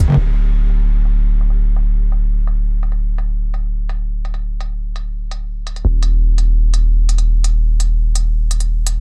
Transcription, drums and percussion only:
0.08 mid tom soft
0.10 mid tom medium
0.12 mid tom medium
0.14 mid tom medium
0.34 closed hi-hat medium
0.70 closed hi-hat medium
1.05 closed hi-hat medium
1.41 closed hi-hat medium
1.50 closed hi-hat soft
1.76 closed hi-hat medium
2.12 closed hi-hat medium
2.47 closed hi-hat medium
2.83 closed hi-hat medium
2.92 closed hi-hat soft
3.18 closed hi-hat medium
3.54 closed hi-hat medium
3.89 closed hi-hat medium
4.25 closed hi-hat medium
4.34 closed hi-hat soft
4.61 closed hi-hat medium
4.96 closed hi-hat medium
5.31 closed hi-hat medium
5.67 closed hi-hat medium
5.76 closed hi-hat soft
6.03 closed hi-hat medium
6.38 closed hi-hat medium
6.74 closed hi-hat medium
7.09 closed hi-hat medium
7.18 closed hi-hat soft
7.44 closed hi-hat medium
7.80 closed hi-hat medium
8.15 closed hi-hat medium
8.51 closed hi-hat medium
8.60 closed hi-hat soft
8.87 closed hi-hat medium

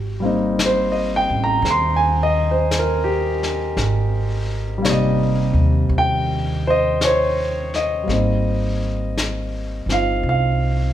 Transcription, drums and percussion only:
0.59 brush sweep soft
0.59 snare soft
0.59 hi-hat pedal medium
1.65 brush sweep soft
1.65 snare soft
2.71 brush sweep soft
2.71 snare soft
2.71 hi-hat pedal soft
3.43 snare soft
3.77 brush sweep soft
3.77 snare soft
4.85 brush sweep soft
4.85 snare soft
4.85 hi-hat pedal soft
5.93 brush sweep soft
7.01 brush sweep soft
7.01 snare soft
7.01 hi-hat pedal soft
7.74 snare soft
8.09 brush sweep soft
8.09 snare soft
9.18 brush sweep soft
9.18 snare soft
9.18 hi-hat pedal soft
9.89 snare soft
10.25 brush sweep soft

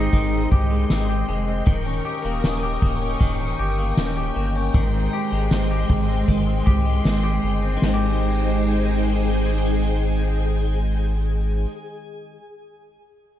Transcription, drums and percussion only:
0.13 kick medium
0.13 ride medium
0.52 kick medium
0.90 snare loud
0.90 ride medium
0.90 tambourine medium
1.67 kick loud
1.67 ride medium
2.44 snare loud
2.44 ride medium
2.44 tambourine medium
2.82 kick loud
3.21 kick loud
3.21 ride medium
3.97 snare loud
3.97 ride medium
3.97 tambourine medium
4.74 kick loud
4.74 ride medium
5.51 snare loud
5.51 ride medium
5.51 tambourine medium
5.90 kick loud
6.28 kick loud
6.28 ride medium
6.67 kick loud
7.05 snare loud
7.05 ride medium
7.05 tambourine medium
7.82 snare loud

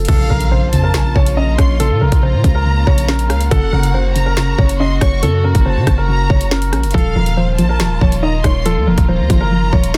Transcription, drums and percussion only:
0.05 kick loud
0.05 closed hi-hat medium
0.05 crash loud
0.08 closed hi-hat medium
0.12 closed hi-hat soft
0.41 closed hi-hat medium
0.73 closed hi-hat medium
0.94 snare loud
0.94 closed hi-hat medium
1.16 kick loud
1.26 closed hi-hat medium
1.58 kick loud
1.58 cross-stick medium
1.58 closed hi-hat medium
1.80 closed hi-hat medium
2.12 kick medium
2.12 closed hi-hat medium
2.44 kick loud
2.44 closed hi-hat medium
2.87 kick loud
2.98 closed hi-hat medium
3.09 snare loud
3.19 closed hi-hat medium
3.30 cross-stick medium
3.30 closed hi-hat medium
3.41 closed hi-hat medium
3.51 kick loud
3.51 closed hi-hat medium
3.83 closed hi-hat medium
4.16 closed hi-hat medium
4.37 snare loud
4.37 closed hi-hat medium
4.58 kick loud
4.69 closed hi-hat medium
5.01 kick medium
5.01 cross-stick medium
5.01 closed hi-hat medium
5.23 closed hi-hat medium
5.55 kick medium
5.55 closed hi-hat medium
5.87 kick medium
5.87 cross-stick loud
5.87 closed hi-hat medium
6.30 kick loud
6.41 closed hi-hat medium
6.51 snare loud
6.62 closed hi-hat medium
6.73 cross-stick medium
6.73 closed hi-hat medium
6.83 closed hi-hat medium
6.91 kick loud
6.91 closed hi-hat medium
6.98 closed hi-hat soft
7.26 closed hi-hat medium
7.58 closed hi-hat medium
7.80 snare loud
7.80 closed hi-hat medium
8.01 kick loud
8.12 closed hi-hat medium
8.44 kick loud
8.44 cross-stick medium
8.44 closed hi-hat medium
8.66 closed hi-hat medium
8.98 kick loud
8.98 closed hi-hat medium
9.30 kick medium
9.30 closed hi-hat medium
9.73 kick loud
9.84 closed hi-hat medium
9.94 snare loud

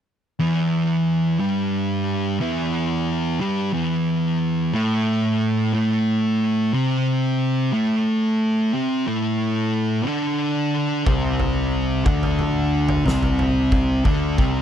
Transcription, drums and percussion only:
11.06 kick medium
11.06 floor tom medium
11.39 floor tom medium
12.06 kick loud
12.06 floor tom medium
12.23 floor tom medium
12.39 floor tom medium
12.39 mid tom medium
12.88 floor tom medium
13.06 snare medium
13.06 floor tom medium
13.23 floor tom medium
13.39 floor tom medium
13.72 kick loud
13.72 floor tom medium
14.05 kick loud
14.05 floor tom medium
14.38 kick loud

